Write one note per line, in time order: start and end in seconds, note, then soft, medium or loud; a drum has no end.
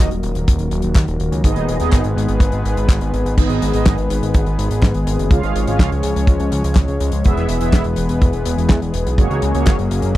0.00 3.33 D#3 medium
0.00 1.42 F#3 medium
0.00 1.42 A#3 medium
0.00 1.42 F#4 medium
0.00 1.42 A#4 medium
0.11 0.22 D#1 medium
0.11 closed hi-hat medium
0.23 0.34 D#1 medium
0.23 closed hi-hat medium
0.35 0.46 D#1 medium
0.35 closed hi-hat medium
0.48 0.58 D#1 loud
0.48 kick loud
0.48 closed hi-hat loud
0.59 0.70 D#1 medium
0.59 closed hi-hat medium
0.71 0.82 D#1 loud
0.71 closed hi-hat medium
0.82 0.94 D#1 medium
0.82 closed hi-hat medium
0.95 1.06 D#2 loud
0.95 kick loud
0.95 snare loud
0.95 clap loud
0.95 closed hi-hat medium
1.08 1.18 D#1 medium
1.08 closed hi-hat medium
1.20 1.30 D#1 medium
1.20 closed hi-hat medium
1.32 1.43 C#2 medium
1.32 closed hi-hat medium
1.44 1.55 G#1 loud
1.44 3.35 G#3 medium
1.44 3.35 B3 medium
1.44 1.77 B3 medium
1.44 1.77 D#4 medium
1.44 3.36 G#4 medium
1.44 1.77 G#4 medium
1.44 3.35 B4 medium
1.44 1.77 D#5 medium
1.44 kick loud
1.44 closed hi-hat medium
1.56 1.67 D#1 medium
1.56 closed hi-hat medium
1.68 1.79 D#1 medium
1.68 closed hi-hat medium
1.80 1.91 D#1 medium
1.80 2.03 B3 medium
1.80 2.03 D#4 medium
1.80 2.03 G#4 medium
1.80 2.03 D#5 loud
1.80 snare soft
1.80 closed hi-hat medium
1.93 2.03 G#1 loud
1.93 kick loud
1.93 snare loud
1.93 clap loud
1.93 closed hi-hat medium
2.04 2.15 G#1 medium
2.04 closed hi-hat medium
2.17 2.27 G#1 loud
2.17 closed hi-hat medium
2.29 2.39 G#1 medium
2.29 closed hi-hat medium
2.40 2.51 G#1 loud
2.40 kick loud
2.40 closed hi-hat medium
2.52 2.64 G#1 medium
2.52 closed hi-hat soft
2.65 2.76 G#1 loud
2.65 closed hi-hat medium
2.77 2.88 G#1 medium
2.77 closed hi-hat medium
2.89 3.00 G#1 loud
2.89 kick loud
2.89 snare loud
2.89 clap loud
2.89 closed hi-hat medium
3.01 3.12 G#1 medium
3.01 closed hi-hat medium
3.13 3.24 G#1 medium
3.13 closed hi-hat medium
3.25 3.36 G#1 medium
3.25 closed hi-hat medium
3.37 3.48 G#1 loud
3.37 5.29 D#3 medium
3.37 10.17 G#3 medium
3.37 3.71 B3 medium
3.37 5.29 B3 medium
3.37 3.71 D#4 medium
3.37 7.21 G#4 medium
3.37 3.71 G#4 medium
3.37 5.29 B4 medium
3.37 3.71 D#5 medium
3.37 kick loud
3.37 closed hi-hat medium
3.37 crash loud
3.50 3.60 G#1 medium
3.50 closed hi-hat medium
3.62 3.72 G#1 loud
3.62 closed hi-hat medium
3.74 3.85 G#1 medium
3.74 3.96 B3 medium
3.74 3.96 D#4 medium
3.74 3.96 G#4 medium
3.74 3.96 D#5 loud
3.74 closed hi-hat medium
3.86 3.97 G#1 loud
3.86 kick loud
3.86 snare loud
3.86 clap loud
3.86 closed hi-hat medium
3.98 4.09 G#1 medium
3.98 closed hi-hat soft
4.10 4.21 G#1 medium
4.10 closed hi-hat loud
4.22 4.33 G#1 medium
4.22 closed hi-hat medium
4.34 4.45 G#1 loud
4.34 kick loud
4.34 closed hi-hat medium
4.46 4.57 G#1 medium
4.46 closed hi-hat soft
4.58 4.69 G#1 loud
4.58 closed hi-hat medium
4.71 4.81 G#1 medium
4.71 closed hi-hat medium
4.82 4.93 G#2 loud
4.82 kick loud
4.82 snare loud
4.82 clap loud
4.82 closed hi-hat medium
4.94 5.05 G#1 medium
4.94 closed hi-hat soft
5.07 5.18 G#1 medium
5.07 closed hi-hat loud
5.19 5.30 F#1 medium
5.19 closed hi-hat medium
5.31 5.42 C#2 loud
5.31 7.23 F3 medium
5.31 5.64 C#4 medium
5.31 7.23 C#4 medium
5.31 5.64 F4 medium
5.31 5.64 G#4 medium
5.31 7.23 C#5 medium
5.31 5.64 F5 medium
5.31 kick loud
5.31 closed hi-hat medium
5.43 5.54 G#1 medium
5.43 closed hi-hat soft
5.55 5.66 G#1 medium
5.55 closed hi-hat medium
5.67 5.78 G#1 medium
5.67 5.90 C#4 medium
5.67 5.90 F4 medium
5.67 5.90 G#4 medium
5.67 5.90 F5 loud
5.67 closed hi-hat medium
5.79 5.90 C#2 loud
5.79 kick loud
5.79 snare loud
5.79 clap loud
5.79 closed hi-hat medium
5.92 6.02 C#2 medium
5.92 closed hi-hat soft
6.03 6.14 C#2 loud
6.03 closed hi-hat loud
6.16 6.26 C#2 medium
6.16 closed hi-hat medium
6.27 6.38 C#2 loud
6.27 kick loud
6.27 closed hi-hat medium
6.40 6.51 C#2 medium
6.40 closed hi-hat soft
6.52 6.63 C#2 loud
6.52 closed hi-hat loud
6.64 6.75 C#2 medium
6.64 closed hi-hat medium
6.75 6.87 C#2 loud
6.75 kick loud
6.75 snare loud
6.75 clap loud
6.75 closed hi-hat medium
6.88 6.99 C#2 medium
6.88 closed hi-hat soft
7.00 7.11 C#2 medium
7.00 closed hi-hat medium
7.12 7.23 C#2 medium
7.12 closed hi-hat medium
7.24 7.36 E1 loud
7.24 9.16 E3 medium
7.24 7.58 B3 medium
7.24 9.16 B3 medium
7.24 7.58 E4 medium
7.24 7.58 G#4 medium
7.24 10.17 G#4 medium
7.24 9.16 B4 medium
7.24 7.58 E5 medium
7.24 kick loud
7.24 closed hi-hat medium
7.37 7.47 E1 medium
7.37 closed hi-hat soft
7.49 7.59 E1 loud
7.49 closed hi-hat loud
7.61 7.72 E1 medium
7.61 7.83 B3 medium
7.61 7.83 E4 medium
7.61 7.83 G#4 medium
7.61 7.83 E5 loud
7.61 closed hi-hat medium
7.73 7.84 E1 loud
7.73 kick loud
7.73 snare loud
7.73 clap medium
7.73 closed hi-hat medium
7.84 7.96 E1 medium
7.84 closed hi-hat soft
7.96 8.08 E1 medium
7.96 closed hi-hat loud
8.09 8.20 E1 medium
8.09 closed hi-hat medium
8.21 8.32 E1 loud
8.21 kick loud
8.21 closed hi-hat medium
8.33 8.44 E1 medium
8.33 closed hi-hat soft
8.45 8.56 E1 loud
8.45 closed hi-hat loud
8.58 8.68 E1 medium
8.58 closed hi-hat medium
8.69 8.80 E2 loud
8.69 kick loud
8.69 snare loud
8.69 clap loud
8.69 closed hi-hat medium
8.82 8.93 E1 medium
8.82 closed hi-hat medium
8.94 9.05 E1 medium
8.94 closed hi-hat loud
9.06 9.17 B1 medium
9.06 closed hi-hat medium
9.18 9.29 F#1 loud
9.18 10.17 F#3 medium
9.18 9.52 A#3 medium
9.18 10.17 A#3 medium
9.18 10.17 C#4 medium
9.18 9.52 F#4 medium
9.18 9.52 G#4 medium
9.18 9.52 C#5 medium
9.18 kick loud
9.18 closed hi-hat medium
9.30 9.41 C#2 medium
9.30 closed hi-hat soft
9.42 9.53 C#2 medium
9.42 closed hi-hat loud
9.54 9.65 C#2 medium
9.54 9.77 A#3 medium
9.54 9.77 F#4 medium
9.54 9.77 G#4 medium
9.54 9.77 C#5 loud
9.54 closed hi-hat medium
9.66 9.77 F#1 loud
9.66 kick loud
9.66 snare loud
9.66 clap loud
9.66 closed hi-hat medium
9.79 9.89 F#1 medium
9.79 closed hi-hat soft
9.91 10.01 F#1 loud
9.91 closed hi-hat medium
10.02 10.14 F#1 medium
10.02 closed hi-hat medium